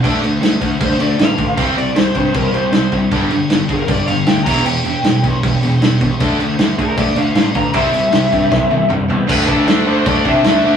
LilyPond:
<<
  \new Staff \with { instrumentName = "Lead electric guitar" } { \time 4/4 \key d \mixolydian \tempo 4 = 156 r2 c''8 d''8 f''4 | r8 d''8 c''8 c''8 bes'8 c''4 r8 | r4. bes'8 d''8 f''8 g''8 bes''8 | g''2. r4 |
r4. bes'8 d''8 f''8 f''8 bes''8 | e''2. r4 | b'8 a'4 c''8 d''8 e''8 e''4 | }
  \new Staff \with { instrumentName = "Distorted electric guitar" } { \clef bass \time 4/4 \key d \mixolydian <d a d'>8 <d a>8 <d a>8 <d a>8 <d a>8 <d a>8 <d a>8 <d a>8 | <c g c'>8 <c g>8 <c g>8 <c g>8 <c g>8 <c g>8 <c g>8 <c g>8 | <g, d g>8 <g, d>8 <g, d>8 <g, d>8 <g, d>8 <g, d>8 <g, d>8 <e, b, e>8 | <e, b,>8 <e, b,>8 <e, b,>8 <e, b,>8 <e, b,>8 <e, b,>8 <e, b,>8 <e, b,>8 |
<d a d'>8 <d a>8 <d a>8 <d a>8 <d a>8 <d a>8 <d a>8 <d a>8 | <c g c'>8 <c g>8 <c g>8 <c g>8 <c g>8 <c g>8 <c g>8 <c g>8 | <d a d'>8 <d a d'>8 <d a d'>8 <d a d'>8 <d a d'>8 <d a d'>8 <d a d'>8 <d a d'>8 | }
  \new Staff \with { instrumentName = "Overdriven electric guitar" } { \clef bass \time 4/4 \key d \mixolydian <d a d'>8 <d a>8 <d a>8 <d a>8 <d a>8 <d a>8 <d a>8 <d a>8 | <c g c'>8 <c g>8 <c g>8 <c g>8 <c g>8 <c g>8 <c g>8 <c g>8 | <g, d g>8 <g, d>8 <g, d>8 <g, d>8 <g, d>8 <g, d>8 <g, d>8 <e, b, e>8 | <e, b,>8 <e, b,>8 <e, b,>8 <e, b,>8 <e, b,>8 <e, b,>8 <e, b,>8 <e, b,>8 |
<d a d'>8 <d a>8 <d a>8 <d a>8 <d a>8 <d a>8 <d a>8 <d a>8 | <c g c'>8 <c g>8 <c g>8 <c g>8 <c g>8 <c g>8 <c g>8 <c g>8 | <d a d'>8 <d a d'>8 <d a d'>8 <d a d'>8 <d a d'>8 <d a d'>8 <d a d'>8 <d a d'>8 | }
  \new Staff \with { instrumentName = "Picked electric bass" } { \clef bass \time 4/4 \key d \mixolydian d,8 d,8 d,8 d,8 d,8 d,8 a,,8 a,,8 | c,8 c,8 c,8 g,8 c,8 c,8 c,8 c,8 | g,,8 g,,8 g,,8 g,,8 g,,8 g,,8 d,8 e,,8 | e,,8 e,,8 e,,8 b,,8 e,,8 e,,8 e,,8 c,8 |
d,8 d,8 d,8 d,8 d,8 d,8 a,,8 a,,8 | c,8 c,8 c,8 g,8 c,8 c,8 c,8 e,8 | d,8 d,8 d,8 d,8 d,8 c8 d,8 d,8 | }
  \new DrumStaff \with { instrumentName = "Drums" } \drummode { \time 4/4 <cymc bd>8 cymc8 <cymc sn>8 <cymc bd>8 <cymc bd>8 cymc8 <cymc sn>8 <cymc bd>8 | <cymc bd>8 cymc8 <cymc sn>8 <cymc bd>8 <cymc bd>8 cymc8 <cymc sn>8 <cymc bd>8 | <cymc bd>8 cymc8 <cymc sn>8 <cymc bd>8 <cymc bd>8 cymc8 <cymc sn>8 <cymc bd>8 | cymc8 cymc8 <cymc sn>8 <cymc bd>8 <cymc bd>8 cymc8 <cymc sn>8 <cymc bd>8 |
<cymc bd>8 cymc8 <cymc sn>8 <cymc bd>8 <cymc bd>8 cymc8 <cymc sn>8 <cymc bd>8 | <cymc bd>8 cymc8 <cymc sn>8 <cymc bd>8 <bd sn>8 tommh8 toml8 tomfh8 | <cymc bd>8 bd8 <cymc sn>4 <cymc bd>8 bd8 <cymc sn>4 | }
>>